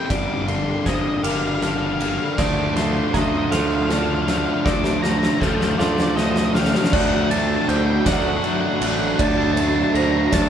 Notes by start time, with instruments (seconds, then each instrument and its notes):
Already playing: clean electric guitar G3 A#3 D#4 G4, ambient pad G4 A#4
0.06 lead electric guitar G5
0.10 picked electric bass G1, distorted electric guitar G2 D3 G3 A#3 D4, ambient pad D3 F5, felt piano D5, lead electric guitar D6, kick, snare, ride
0.18 lead electric guitar D6
0.26 lead electric guitar D6
0.34 lead electric guitar D6
0.42 lead electric guitar D6
0.47 distorted electric guitar G2 D3 G3 A#3 D4, lead electric guitar C6, ride
0.56 lead electric guitar C6
0.64 lead electric guitar C6
0.71 lead electric guitar C6
0.79 lead electric guitar C6
0.86 picked electric bass G1, distorted electric guitar G2 D3 G3 A#3 D4, felt piano C5, lead electric guitar D#5, kick, snare, ride
0.95 lead electric guitar D#5
1.01 lead electric guitar D#5
1.09 lead electric guitar D#5
1.18 lead electric guitar D#5
1.23 picked electric bass G1, distorted electric guitar G2 D3 G3 A#3 D4, clean electric guitar G4, felt piano A#4, lead electric guitar F5, ride
1.32 lead electric guitar F5
1.40 lead electric guitar F5
1.47 lead electric guitar F5
1.55 lead electric guitar F5
1.61 distorted electric guitar G2 D3 G3 A#3 D4, lead electric guitar F5, snare, ride
1.71 lead electric guitar F5
1.78 lead electric guitar F5
1.87 lead electric guitar F5
1.94 lead electric guitar F5
2.00 distorted electric guitar G2 D3 G3 A#3 D4, lead electric guitar F5, ride
2.10 lead electric guitar F5
2.18 lead electric guitar F5
2.26 lead electric guitar F5
2.33 ambient pad A3 F4, lead electric guitar F5
2.38 picked electric bass D2, distorted electric guitar D3 F3 A3 D4, felt piano D5, lead electric guitar D6, kick, snare, crash
2.46 lead electric guitar D6
2.54 lead electric guitar D6
2.62 lead electric guitar D6
2.70 lead electric guitar D6
2.75 distorted electric guitar D3 F3 A3 D4, lead electric guitar C6, snare, ride
2.83 lead electric guitar C6
2.91 lead electric guitar C6
2.99 lead electric guitar C6
3.08 lead electric guitar C6
3.14 picked electric bass D2, distorted electric guitar D3 F3 A3 D4, lead electric guitar D#5, felt piano A#5, kick, snare, ride
3.21 lead electric guitar D#5
3.29 lead electric guitar D#5
3.37 lead electric guitar D#5
3.45 lead electric guitar D#5
3.51 picked electric bass D2, distorted electric guitar D3 F3 A3 D4, clean electric guitar F4, felt piano A4, lead electric guitar F5, snare, ride
3.60 lead electric guitar F5
3.67 lead electric guitar F5
3.75 lead electric guitar F5
3.83 lead electric guitar F5
3.89 distorted electric guitar D3 F3 A3 D4, lead electric guitar F5, snare, ride
3.99 lead electric guitar F5
4.06 lead electric guitar F5
4.15 lead electric guitar F5
4.22 lead electric guitar F5
4.26 distorted electric guitar D3 F3 A3 D4, lead electric guitar F5, snare, ride
4.37 lead electric guitar F5
4.46 lead electric guitar F5
4.54 lead electric guitar F5
4.61 distorted electric guitar D3 F3, felt piano D5, lead electric guitar F5 D6, ambient pad G5
4.65 picked electric bass D2, distorted electric guitar A3 D4, kick, snare
4.72 lead electric guitar D6
4.79 lead electric guitar D6
4.84 lead electric guitar D6, snare
4.93 lead electric guitar D6
5.02 distorted electric guitar D3 F3 A3 D4, lead electric guitar A#5, snare
5.11 lead electric guitar A#5
5.19 lead electric guitar A#5
5.23 lead electric guitar A#5, snare
5.35 lead electric guitar A#5
5.40 picked electric bass D2, distorted electric guitar D3 F3 A3 D4, felt piano A4, lead electric guitar F5 A5, kick, snare
5.47 lead electric guitar F5 A5
5.54 lead electric guitar F5 A5
5.61 lead electric guitar F5 A5, snare
5.69 lead electric guitar F5 A5
5.78 picked electric bass D2, distorted electric guitar D3 F3 A3 D4, clean electric guitar F4, felt piano A4, lead electric guitar D5, snare
5.86 lead electric guitar D5
5.93 lead electric guitar D5
5.98 snare
6.03 lead electric guitar D5
6.10 lead electric guitar D5
6.16 distorted electric guitar D3 F3 A3 D4, lead electric guitar D#5, snare
6.23 lead electric guitar D#5
6.30 lead electric guitar D#5
6.36 lead electric guitar D#5, snare
6.45 lead electric guitar D#5
6.54 distorted electric guitar D3 F3 A3 D4, lead electric guitar F5, snare
6.61 lead electric guitar F5, snare
6.70 lead electric guitar F5
6.75 lead electric guitar F5, snare
6.84 lead electric guitar F5, snare
6.92 picked electric bass D2, distorted electric guitar D3 F#3 A3 D4, ambient pad F#3 A3 D4 D5, felt piano D5, lead electric guitar F#5, kick, crash
7.01 lead electric guitar F#5
7.09 lead electric guitar F#5
7.16 lead electric guitar F#5
7.24 lead electric guitar F#5
7.30 distorted electric guitar F#3 A3 D4, lead electric guitar A5, ride
7.38 lead electric guitar A5
7.47 lead electric guitar A5
7.55 lead electric guitar A5
7.62 lead electric guitar A5
7.67 picked electric bass D2, distorted electric guitar D3 F#3 A3 D4, felt piano C5, lead electric guitar G5, ride
7.77 lead electric guitar G5
7.84 lead electric guitar G5
7.92 lead electric guitar G5
7.99 lead electric guitar G5
8.06 picked electric bass D2, distorted electric guitar D3 F#3 A3 D4, felt piano D5, lead electric guitar F#5, kick, snare, ride
8.14 lead electric guitar F#5
8.23 lead electric guitar F#5
8.29 lead electric guitar F#5
8.37 lead electric guitar F#5
8.43 distorted electric guitar D3 F#3 A3 D4, lead electric guitar F#5, ride
8.53 lead electric guitar F#5
8.61 lead electric guitar F#5
8.68 lead electric guitar F#5
8.76 distorted electric guitar D4, lead electric guitar F#5
8.81 picked electric bass A1, distorted electric guitar F#3 A3, lead electric guitar F#5, ride
8.91 lead electric guitar F#5
8.99 lead electric guitar F#5
9.07 lead electric guitar F#5
9.16 picked electric bass D2, distorted electric guitar D3, felt piano D5, lead electric guitar F#5, kick, ride
9.20 distorted electric guitar F#3 A3 D4, lead electric guitar A5
9.28 lead electric guitar A5
9.38 lead electric guitar A5
9.44 lead electric guitar A5
9.52 distorted electric guitar D4, lead electric guitar A5
9.57 distorted electric guitar F#3 A3, lead electric guitar A5, ride
9.68 lead electric guitar A5
9.76 lead electric guitar A5
9.83 lead electric guitar A5
9.93 picked electric bass D2, distorted electric guitar D3 F#3 A3 D4, felt piano C5, lead electric guitar A#5, ride
10.03 lead electric guitar A#5
10.11 lead electric guitar A#5
10.18 lead electric guitar A#5
10.28 distorted electric guitar D4, lead electric guitar A#5
10.32 picked electric bass D2, distorted electric guitar D3 F#3 A3, felt piano D5, lead electric guitar A5, kick, snare, ride
10.42 lead electric guitar A5